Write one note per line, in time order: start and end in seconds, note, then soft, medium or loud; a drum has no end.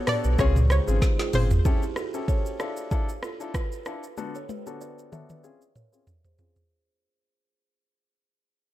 0.00 0.38 B3 medium
0.00 0.38 F#4 medium
0.00 0.38 A4 medium
0.00 0.38 C#5 medium
0.07 0.36 B3 medium
0.07 0.36 D4 medium
0.07 0.36 F#4 medium
0.07 0.21 G4 medium
0.07 0.37 A4 medium
0.07 0.20 B4 medium
0.07 0.23 D5 medium
0.07 cross-stick loud
0.07 mid tom medium
0.07 open hi-hat medium
0.07 shaker medium
0.24 0.37 B1 medium
0.24 0.36 G4 medium
0.24 0.35 B4 medium
0.24 shaker medium
0.38 0.80 C#2 loud
0.38 1.64 C#3 medium
0.38 1.64 G#3 medium
0.38 0.55 C4 loud
0.38 1.64 C4 medium
0.38 0.55 C#4 medium
0.38 1.64 D#4 medium
0.38 0.55 F4 medium
0.38 1.64 F4 medium
0.38 0.55 G#4 loud
0.38 0.54 C#5 medium
0.38 kick loud
0.38 cross-stick medium
0.38 shaker medium
0.56 mid tom medium
0.56 shaker medium
0.70 0.84 G#4 medium
0.70 0.84 C5 medium
0.70 0.86 C#5 medium
0.70 cross-stick medium
0.70 shaker medium
0.87 1.00 G#1 loud
0.87 1.01 C4 medium
0.87 1.01 C#4 medium
0.87 1.01 F4 medium
0.87 1.01 G#4 medium
0.87 shaker medium
1.02 kick loud
1.02 snare medium
1.02 shaker medium
1.19 1.31 F4 medium
1.19 1.30 G#4 medium
1.19 snare medium
1.19 shaker soft
1.33 1.60 G1 medium
1.33 1.50 C4 medium
1.33 1.50 C#4 medium
1.33 1.50 F4 medium
1.33 1.47 F4 medium
1.33 1.47 G#4 medium
1.33 1.50 G#4 medium
1.33 1.49 C5 medium
1.33 mid tom loud
1.33 open hi-hat medium
1.33 shaker medium
1.51 floor tom loud
1.51 shaker medium
1.65 1.82 C#4 medium
1.65 1.82 E4 medium
1.65 1.79 E4 medium
1.65 1.78 G4 medium
1.65 1.82 G4 medium
1.65 1.82 A4 loud
1.65 kick loud
1.65 shaker medium
1.83 shaker medium
1.96 2.10 F#4 medium
1.96 2.10 A4 medium
1.96 cross-stick medium
1.96 shaker soft
2.14 2.56 C#4 medium
2.14 2.56 E4 medium
2.14 2.57 G4 medium
2.14 2.57 A4 medium
2.14 shaker soft
2.28 2.42 A4 medium
2.28 2.42 C#5 medium
2.28 kick medium
2.28 shaker medium
2.46 shaker medium
2.60 2.89 D4 medium
2.60 2.89 E4 medium
2.60 2.89 F4 medium
2.60 2.90 A4 medium
2.60 2.74 A4 medium
2.60 2.73 D5 medium
2.60 cross-stick medium
2.60 shaker medium
2.77 shaker medium
2.91 3.08 D4 medium
2.91 3.08 E4 medium
2.91 3.08 F4 medium
2.91 3.08 A4 loud
2.91 kick loud
2.91 shaker medium
3.09 shaker medium
3.23 3.37 F4 medium
3.23 3.36 A4 medium
3.23 cross-stick medium
3.23 shaker soft
3.40 3.54 D4 medium
3.40 3.54 E4 medium
3.40 3.54 F4 medium
3.40 3.54 A4 medium
3.40 shaker medium
3.54 3.79 F4 medium
3.54 3.79 B4 medium
3.54 kick medium
3.54 cross-stick loud
3.54 shaker medium
3.72 shaker soft
3.86 4.03 D4 medium
3.86 4.03 E4 medium
3.86 4.03 F4 medium
3.86 4.03 A4 medium
3.86 cross-stick medium
3.86 shaker soft
4.03 shaker medium
4.17 4.34 D3 medium
4.17 4.34 B3 medium
4.17 4.34 D4 medium
4.17 4.34 F#4 medium
4.17 4.34 A4 medium
4.17 high tom medium
4.17 shaker medium
4.35 4.46 A4 medium
4.35 4.46 C#5 medium
4.35 shaker soft
4.49 4.63 G4 medium
4.49 4.62 B4 medium
4.49 high tom medium
4.49 shaker soft
4.66 5.09 D3 medium
4.66 5.09 B3 medium
4.66 5.09 D4 medium
4.66 5.09 F#4 medium
4.66 5.09 A4 medium
4.66 shaker soft
4.81 4.95 B4 medium
4.81 4.94 D5 medium
4.81 shaker medium
4.99 shaker medium
5.12 5.41 D3 medium
5.12 5.42 B3 medium
5.12 5.42 D4 medium
5.12 5.42 F#4 medium
5.12 5.42 A4 medium
5.12 5.26 C#5 medium
5.12 5.26 E5 medium
5.12 mid tom medium
5.12 shaker soft
5.30 5.41 B4 medium
5.30 5.41 D5 medium
5.30 mid tom medium
5.30 shaker medium
5.43 5.60 C4 medium
5.43 5.60 C#4 medium
5.43 5.61 F4 medium
5.43 5.61 G#4 loud
5.43 shaker medium
5.62 shaker medium
5.76 5.89 A#4 medium
5.76 5.89 C#5 medium
5.76 mid tom medium
5.76 shaker medium
5.92 6.06 C4 medium
5.92 6.06 C#4 medium
5.92 6.06 F4 medium
5.92 6.07 G#4 medium
5.92 shaker medium
6.07 floor tom medium
6.07 shaker medium
6.25 6.36 G#4 medium
6.25 6.35 C5 medium
6.25 floor tom medium
6.25 shaker soft
6.38 6.55 C4 medium
6.38 6.55 C#4 medium
6.38 6.55 F4 medium
6.38 6.52 F4 medium
6.38 6.55 G#4 medium
6.38 6.52 G#4 medium
6.38 floor tom medium
6.38 shaker soft
6.56 floor tom medium
6.56 shaker medium